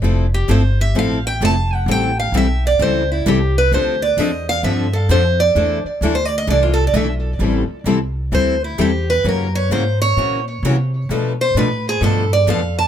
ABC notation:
X:1
M:4/4
L:1/16
Q:"Swing" 1/4=130
K:Am
V:1 name="Steel-string acoustic guitar"
z2 G2 c2 e2 f2 g2 a2 ^f2 | g2 f2 e2 d2 c2 E2 G2 B2 | c2 d2 ^d2 f2 e2 A2 c2 =d2- | d2 z3 c d ^d =d F A d e2 z2 |
z8 c2 E2 G2 B2 | ^A2 ^c2 =c2 ^c4 z6 | z2 c2 B2 ^G2 A2 d2 f2 a2 |]
V:2 name="Steel-string acoustic guitar"
[F,CEA]2 z2 [F,CEA]2 z2 [F,CEA]2 z2 [F,CEA]2 z2 | [E,G,CEA]2 z2 [E,G,CEA]2 z2 [E,G,CEA]2 z2 [E,G,CEA]2 z2 | [D,F,CDA]2 z2 [D,F,CDA]2 z2 [D,F,CDA]2 z2 [D,F,CDA]2 z2 | [E,A,DEA]2 z2 [E,A,DEA]2 z2 [E,A,DEA]2 z2 [E,A,DEA]2 z2 |
[E,G,CEA]2 z2 [E,G,CEA]2 z2 [E,G,CEA]2 z2 [E,G,CEA]2 z2 | [^C,E,^A,^C^F]2 z2 [C,E,A,CF]2 z2 [C,E,A,CF]2 z2 [C,E,A,CF]2 z2 | [B,,F,A,DA]2 z2 [B,,F,A,DA]2 z2 [B,,F,A,DA]2 z2 [B,,F,A,DA]2 z2 |]
V:3 name="Steel-string acoustic guitar"
[F,A,CEA]2 z2 [F,A,CEA]2 z2 [F,A,CEA]2 z2 [F,A,CEA]2 z2 | [E,G,CEA]2 z2 [E,G,CEA]2 z2 [E,G,CEA]2 z2 [E,G,CEA]2 z2 | [D,F,CDA]2 z2 [D,F,CDA]2 z2 [D,F,CDA]2 z2 [D,F,CDA]2 z2 | [E,A,DEA]2 z2 [E,A,DEA]2 z2 [E,A,DEA]2 z2 [E,A,DEA]2 z2 |
[E,G,CEA]2 z2 [E,G,CEA]2 z2 [E,G,CEA]2 z2 [E,G,CEA]2 z2 | [^F,^CE^A]2 z2 [F,CEA]2 z2 [F,CEA]2 z2 [F,CEA]2 z2 | [B,,F,A,DAB]2 z2 [B,,F,A,DAB]2 z2 [B,,F,A,DAB]2 z2 [B,,F,A,DAB]2 z2 |]
V:4 name="Upright bass" clef=bass
F,,,4 G,,,4 A,,,4 F,,,4 | A,,,4 B,,,4 ^C,,4 =C,,4 | D,,4 E,,4 G,,4 F,,4 | E,,2 z2 D,,4 C,,4 B,,,4 |
A,,,2 z2 C,,4 D,,4 E,,4 | ^F,,4 ^G,,4 ^A,,4 C,4 | B,,4 A,,4 G,,4 F,,4 |]